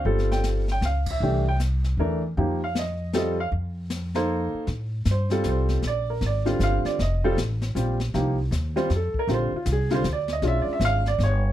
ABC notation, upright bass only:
X:1
M:3/4
L:1/8
Q:"Swing" 1/4=156
K:Fmix
V:1 name="Upright bass" clef=bass
G,,,4 _D,,2 | C,,4 =E,,2 | F,,6 | F,,4- F,, z |
A,,2 G,,2 C,,2 | B,,,2 _A,,,2 G,,, z | F,,,2 A,,,2 B,,,2 | C,,2 E,,2 F,, z |
B,,, z C,,2 D,,2 | =B,,, z ^G,,,2 =G,,,2 |]